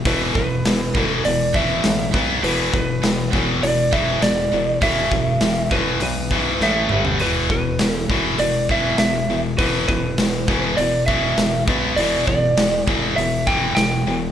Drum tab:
HH |o---o---o---o---|o---o---o---o---|o---o---o-------|o---o---o---o---|
SD |----o-------o---|----o-------o---|----o-------o---|----o-------o---|
T2 |----------------|----------------|--------------o-|----------------|
FT |----------------|----------------|---------------o|----------------|
BD |o-o---o---o---o-|--o---o---o-----|o-o---o---o-----|--o---o---o-----|

HH |o---o---o---o---|o---o---o---o---|
SD |----o-------o---|----o-------o---|
T2 |----------------|----------------|
FT |----------------|----------------|
BD |o-o---o---o---o-|--o---o---o-----|